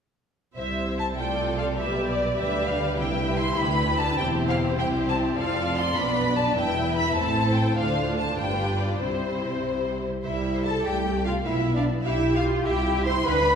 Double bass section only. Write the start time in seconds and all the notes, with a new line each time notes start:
0.56 C2
1.18 C2
1.78 B1
2.38 D2
2.98 C2
3.59 D2
4.18 E1
4.78 C2
5.37 F1
5.96 B1
6.56 E1
7.17 A1
7.76 D2
8.38 G1
9.01 C2
10.25 C2
10.85 C2
11.46 B1
12.06 B1
12.66 C2
13.25 D2